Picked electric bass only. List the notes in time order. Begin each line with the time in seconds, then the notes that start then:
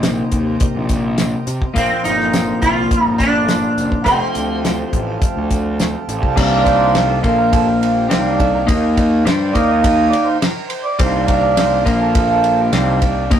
Already playing: A#1
0.32 D#2
0.76 A#1
1.47 C3
1.76 A#1
2.06 G1
2.62 C2
3.07 G1
3.78 F#1
4.06 F1
4.36 D2
4.93 A1
5.36 D2
6.08 A1
6.23 C2
6.37 C2
7.24 A#1
8.10 C2
8.40 C2
8.68 D#2
9.26 G2
9.55 D#2
10.99 C2
11.86 A#1
12.73 C2
13.02 C2
13.31 D#2